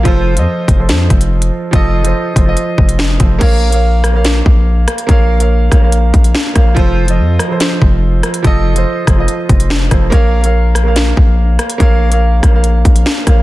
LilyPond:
<<
  \new Staff \with { instrumentName = "Grand piano" } { \time 4/4 \key f \phrygian \tempo 4 = 143 <f f' a' c''>8 r16 <f f' a' ees''>8 r8 <f f' a' c''>4~ <f f' a' c''>16 r4 | <f f' a' ees''>8 r16 <f f' a' c''>8 r16 <f f' a' c''>16 <f f' a' ees''>4 r8. <f f' a' c''>16 r16 | <bes bes' des'' f''>8 r16 <bes bes' des'' f''>8 r8 <bes bes' des'' f''>4~ <bes bes' des'' f''>16 r4 | <bes bes' des'' f''>8 r16 <bes bes' des'' f''>8 r16 <bes bes' des'' f''>16 <bes bes' des'' f''>4 r8. <bes bes' des'' f''>16 r16 |
<f f' a' c''>8 r16 <f f' a' ees''>8 r8 <f f' a' c''>4~ <f f' a' c''>16 r4 | <f f' a' ees''>8 r16 <f f' a' c''>8 r16 <f f' a' c''>16 <f f' a' ees''>4 r8. <f f' a' c''>16 r16 | <bes bes' des'' f''>8 r16 <bes bes' des'' f''>8 r8 <bes bes' des'' f''>4~ <bes bes' des'' f''>16 r4 | <bes bes' des'' f''>8 r16 <bes bes' des'' f''>8 r16 <bes bes' des'' f''>16 <bes bes' des'' f''>4 r8. <bes bes' des'' f''>16 r16 | }
  \new Staff \with { instrumentName = "808-style bass" } { \clef bass \time 4/4 \key f \phrygian f,,8. f,16 r8 f,,8 f,8 f,,4 r8 | f,,4 r8 f,,8 r8 f,,4 f,,8 | bes,,2~ bes,,8 bes,,4 r8 | bes,,4. bes,,4 bes,,8 r8 bes,,8 |
f,,4 f,8 r4 f,,4 r8 | f,,4 r8 f,,8 r8 f,,4 f,,8 | bes,,2~ bes,,8 bes,,4 r8 | bes,,4. bes,,4 bes,,8 r8 bes,,8 | }
  \new DrumStaff \with { instrumentName = "Drums" } \drummode { \time 4/4 <hh bd>8. hh16 r8 <hh bd>8 <hh sn>8 <hh bd>16 hh16 r16 hh8. | <hh bd>8. hh16 r8 <hh bd>8 hh8 bd16 hh16 sn8 <hh bd>8 | <cymc hh bd>8. hh16 r8 <hh ss>8 <hh sn>8 bd8 r8 <hh ss>16 hh16 | <hh bd>8. hh16 r8 <hh bd ss>8 hh8 <hh bd>16 hh16 sn8 <hh bd ss>8 |
<hh bd>8. hh16 r8 <hh ss>8 <hh sn>8 bd8 r8 <hh ss>16 hh16 | <hh bd>8. hh16 r8 <hh bd ss>8 hh8 <hh bd>16 hh16 sn8 <hh bd ss>8 | <hh bd>8. hh16 r8 <hh ss>8 <hh sn>8 bd8 r8 <hh ss>16 hh16 | <hh bd>8. hh16 r8 <hh bd ss>8 hh8 <hh bd>16 hh16 sn8 <hh bd ss>8 | }
>>